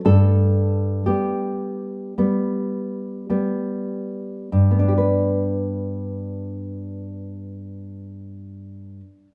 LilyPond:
\new Staff \with { instrumentName = "Nylon-string guitar" } { \time 4/4 \key g \major \tempo 4 = 50 << { a'4 g'2~ g'8 r8 | <g, b d' g' b'>1 | } \\ { g,4 <g b>4 <g b>4 <g b>4 | r1 | } >> }